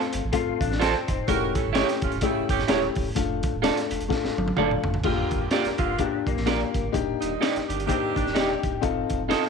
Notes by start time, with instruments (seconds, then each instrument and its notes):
Already playing: upright piano A3 C4 F4 A4
0.00 snare
0.13 sub bass G1, closed hi-hat
0.24 sub bass A1
0.32 upright piano A3 C4 F4 A4, clean electric guitar F4, kick, closed hi-hat
0.47 sub bass A1
0.60 sub bass A1, clean electric guitar D4, kick, closed hi-hat
0.72 snare
0.79 clean electric guitar C4 F4 A4 C5, upright piano F4 D5, snare, closed hi-hat
1.08 sub bass F1, upright piano D#4 C5, kick, closed hi-hat
1.28 sub bass E1, upright piano A3 C#4 E4 G4, saxophone section F#4 A#4, kick, closed hi-hat
1.55 saxophone section E3 C#4 A4, kick, closed hi-hat
1.67 sub bass G1
1.73 saxophone section E3 C#4 G4, upright piano A3 C#4 E4 G4, clean electric guitar E4 G4 C#5, snare, closed hi-hat
1.89 snare, closed hi-hat
2.02 sub bass E1, saxophone section C#4 F4, kick, closed hi-hat
2.12 sub bass E1, closed hi-hat
2.21 saxophone section C#3 A3 E4, upright piano A3 C#4 E4 G4, kick, closed hi-hat
2.37 sub bass F#1
2.49 sub bass F#1, saxophone section E3 C#4 G4, kick, closed hi-hat
2.59 snare
2.68 sub bass D#1, upright piano A3 C#4 E4 G4, clean electric guitar E4 G4 C#5, snare, closed hi-hat
2.95 sub bass E1, kick, open hi-hat
3.15 sub bass F1, upright piano A3 D4 F4 A4, kick, closed hi-hat
3.43 kick, closed hi-hat
3.54 sub bass D#1
3.62 upright piano A3 D4 F4 A4, clean electric guitar F4 A4 D5, snare, closed hi-hat
3.77 snare, closed hi-hat
3.91 sub bass F1, closed hi-hat
4.00 sub bass F1, closed hi-hat
4.08 upright piano A3 D4 F4 A4, kick, snare
4.24 sub bass G1, snare
4.38 sub bass G1, high tom
4.48 high tom
4.57 sub bass F1, upright piano A3 D4 F4 A4, clean electric guitar F4 A4 D5, mid tom
4.71 mid tom
4.84 sub bass F#1, floor tom
4.94 floor tom
5.03 sub bass G1, saxophone section D3 A#3 F4, upright piano A3 D4 F4 G4, kick, crash
5.10 upright piano A#3
5.31 sub bass G1, kick, closed hi-hat
5.42 saxophone section D3 A#3 G4
5.51 saxophone section D3 A#3 G4, upright piano A#3 D4 F4 G4, clean electric guitar F4 A#4 D5, snare, closed hi-hat
5.65 sub bass F1, snare, closed hi-hat
5.78 sub bass F1, saxophone section D3 A#3 F4, clean electric guitar F4, kick, closed hi-hat
5.98 upright piano A#3 D4 F4 G4, clean electric guitar D4, kick, closed hi-hat
6.27 sub bass A#1, clean electric guitar A#3, kick, closed hi-hat
6.37 sub bass A#1, snare
6.45 upright piano A#3 D4 F4 G4, clean electric guitar F4 A#4 D5, snare, closed hi-hat
6.74 sub bass G1, kick, closed hi-hat
6.92 sub bass D#1, upright piano A#3 D4 D#4 G4, kick, closed hi-hat
7.21 sub bass D#1, saxophone section A#2 G3 D#4, closed hi-hat
7.39 upright piano A#3 D4 D#4 G4, clean electric guitar D#4 G4 D5, snare, closed hi-hat
7.56 sub bass G1, snare, closed hi-hat
7.68 sub bass G1, saxophone section D#3 D4 G4, closed hi-hat
7.80 closed hi-hat
7.86 saxophone section D#3 D4 G4, upright piano A#3 D4 D#4 G4, clean electric guitar C4, kick, closed hi-hat
8.16 sub bass G1, clean electric guitar D4, kick, closed hi-hat
8.26 sub bass D1, snare
8.34 sub bass D#1, upright piano A#3 D4 D#4 G4, clean electric guitar D#4 G4 D5, snare, closed hi-hat
8.63 sub bass E1, kick, closed hi-hat
8.81 sub bass F1, upright piano C4 D#4 F4 A4, kick, closed hi-hat
9.10 sub bass F1, kick, closed hi-hat
9.28 upright piano C4 D#4 F4 A4, clean electric guitar D#4 F4 A4 D#5, snare, closed hi-hat